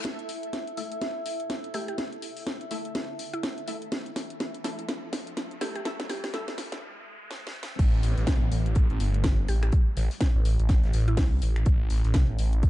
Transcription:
0.00 6.82 E4 medium
0.00 6.82 A4 medium
0.00 6.82 E5 medium
0.05 snare soft
0.05 closed hi-hat medium
0.05 riser medium
0.19 closed hi-hat soft
0.29 open hi-hat loud
0.43 closed hi-hat medium
0.53 snare soft
0.53 closed hi-hat medium
0.67 closed hi-hat soft
0.77 0.92 A3 medium
0.77 0.91 E4 medium
0.77 0.92 A4 medium
0.77 0.92 E5 medium
0.77 open hi-hat loud
0.92 closed hi-hat medium
1.01 snare medium
1.01 closed hi-hat medium
1.26 open hi-hat loud
1.40 closed hi-hat medium
1.50 snare medium
1.50 closed hi-hat medium
1.64 closed hi-hat soft
1.74 1.88 A3 medium
1.74 1.88 E4 medium
1.74 1.83 G4 medium
1.74 1.88 A4 medium
1.74 1.88 E5 medium
1.74 open hi-hat loud
1.88 1.95 G4 medium
1.88 closed hi-hat soft
1.98 snare medium
1.98 closed hi-hat medium
2.12 closed hi-hat soft
2.22 open hi-hat loud
2.37 open hi-hat medium
2.47 snare medium
2.47 closed hi-hat medium
2.61 closed hi-hat soft
2.71 2.85 A3 medium
2.71 2.85 E4 medium
2.71 2.85 A4 medium
2.71 2.85 E5 medium
2.71 open hi-hat loud
2.85 closed hi-hat medium
2.95 snare medium
2.95 closed hi-hat medium
3.19 open hi-hat loud
3.34 3.68 E4 loud
3.34 closed hi-hat medium
3.43 snare medium
3.43 closed hi-hat medium
3.58 closed hi-hat soft
3.68 3.82 A3 medium
3.68 3.82 E4 medium
3.68 3.82 A4 medium
3.68 3.82 E5 medium
3.68 open hi-hat loud
3.82 closed hi-hat soft
3.92 snare medium
3.92 closed hi-hat medium
4.06 closed hi-hat soft
4.16 snare medium
4.16 open hi-hat loud
4.30 closed hi-hat soft
4.40 snare medium
4.40 closed hi-hat medium
4.54 closed hi-hat soft
4.64 4.79 A3 medium
4.64 4.79 E4 medium
4.64 4.79 A4 medium
4.64 4.79 E5 medium
4.64 snare medium
4.64 open hi-hat loud
4.79 closed hi-hat medium
4.89 snare medium
4.89 closed hi-hat medium
5.13 snare medium
5.13 open hi-hat loud
5.27 closed hi-hat medium
5.37 snare medium
5.37 closed hi-hat medium
5.51 closed hi-hat soft
5.61 5.75 A3 medium
5.61 5.75 E4 medium
5.61 5.70 G4 medium
5.61 5.75 A4 medium
5.61 5.75 E5 medium
5.61 snare medium
5.61 open hi-hat loud
5.75 5.82 G4 medium
5.75 closed hi-hat soft
5.85 6.00 A3 medium
5.85 6.00 E4 medium
5.85 6.00 A4 medium
5.85 6.00 E5 medium
5.85 snare loud
5.85 closed hi-hat medium
6.00 snare medium
6.00 closed hi-hat soft
6.09 6.19 G4 medium
6.09 snare medium
6.09 open hi-hat loud
6.24 6.30 G4 medium
6.24 snare medium
6.24 open hi-hat medium
6.34 6.48 A3 medium
6.34 6.48 E4 medium
6.34 6.48 A4 medium
6.34 6.48 E5 medium
6.34 snare medium
6.34 closed hi-hat medium
6.48 snare medium
6.48 closed hi-hat soft
6.58 snare medium
6.58 open hi-hat loud
6.72 snare medium
6.72 closed hi-hat soft
7.31 snare medium
7.47 snare medium
7.63 snare loud
7.79 8.02 A1 loud
7.79 kick loud
7.79 closed hi-hat medium
7.79 crash loud
7.79 downlifter medium
8.03 8.15 A1 loud
8.03 closed hi-hat medium
8.03 open hi-hat loud
8.17 8.26 A1 loud
8.17 snare soft
8.17 closed hi-hat medium
8.27 8.39 C2 loud
8.27 kick loud
8.27 snare loud
8.27 closed hi-hat medium
8.42 8.50 A1 loud
8.51 8.88 A1 medium
8.51 closed hi-hat medium
8.51 open hi-hat loud
8.66 closed hi-hat medium
8.75 kick loud
8.75 closed hi-hat medium
8.90 8.98 A1 loud
8.90 closed hi-hat soft
9.00 9.47 G1 medium
9.00 closed hi-hat medium
9.00 open hi-hat loud
9.14 closed hi-hat medium
9.24 kick loud
9.24 snare loud
9.24 closed hi-hat medium
9.48 9.71 A1 medium
9.48 9.58 G4 medium
9.48 closed hi-hat medium
9.48 open hi-hat loud
9.63 9.69 G4 medium
9.63 finger snap medium
9.63 closed hi-hat medium
9.72 kick loud
9.72 closed hi-hat medium
9.97 10.09 A1 medium
9.97 closed hi-hat medium
9.97 open hi-hat loud
10.11 snare medium
10.11 open hi-hat medium
10.21 kick loud
10.21 snare loud
10.21 closed hi-hat medium
10.35 10.57 A1 loud
10.45 closed hi-hat medium
10.45 open hi-hat loud
10.59 10.81 A1 medium
10.59 closed hi-hat medium
10.69 kick loud
10.69 snare medium
10.69 closed hi-hat medium
10.84 10.92 A1 loud
10.84 snare soft
10.84 closed hi-hat soft
10.93 11.16 A1 medium
10.93 snare soft
10.93 closed hi-hat medium
10.93 open hi-hat loud
11.08 11.42 E4 loud
11.08 closed hi-hat medium
11.17 11.40 C2 medium
11.17 kick loud
11.17 snare loud
11.17 closed hi-hat medium
11.17 open hi-hat medium
11.42 11.65 A1 medium
11.42 closed hi-hat medium
11.42 open hi-hat loud
11.56 finger snap medium
11.56 closed hi-hat soft
11.66 11.89 A1 loud
11.66 kick loud
11.66 closed hi-hat medium
11.90 12.02 A1 loud
11.90 closed hi-hat medium
11.90 open hi-hat loud
12.04 12.13 A1 medium
12.04 snare soft
12.04 closed hi-hat soft
12.14 12.27 C2 loud
12.14 kick loud
12.14 snare loud
12.14 closed hi-hat medium
12.29 12.37 A1 loud
12.39 12.70 A1 loud
12.39 closed hi-hat medium
12.39 open hi-hat loud
12.53 closed hi-hat medium
12.63 kick loud
12.63 closed hi-hat medium

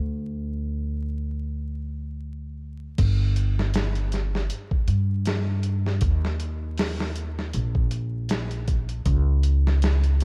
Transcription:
0.00 2.95 D2 medium
2.98 4.47 G1 medium
2.98 kick loud
2.98 closed hi-hat medium
2.98 crash loud
3.36 closed hi-hat medium
3.59 snare medium
3.74 snare loud
3.74 closed hi-hat medium
3.95 closed hi-hat soft
4.12 snare soft
4.12 closed hi-hat medium
4.35 snare soft
4.50 closed hi-hat medium
4.71 kick medium
4.88 5.99 G2 medium
4.88 closed hi-hat medium
5.25 snare loud
5.25 closed hi-hat medium
5.63 closed hi-hat medium
5.86 snare soft
6.01 7.51 D#2 medium
6.01 kick loud
6.01 closed hi-hat medium
6.25 snare soft
6.40 closed hi-hat medium
6.77 snare loud
6.77 open hi-hat medium
7.00 snare medium
7.16 closed hi-hat medium
7.39 snare soft
7.53 9.03 A#1 medium
7.53 closed hi-hat medium
7.75 kick medium
7.91 closed hi-hat medium
8.29 snare loud
8.29 closed hi-hat medium
8.51 closed hi-hat soft
8.68 kick medium
8.68 closed hi-hat medium
8.89 closed hi-hat soft
9.06 10.24 C#2 loud
9.06 kick loud
9.06 closed hi-hat medium
9.43 closed hi-hat medium
9.67 snare medium
9.82 snare loud
9.82 closed hi-hat medium
10.04 closed hi-hat soft
10.20 closed hi-hat medium

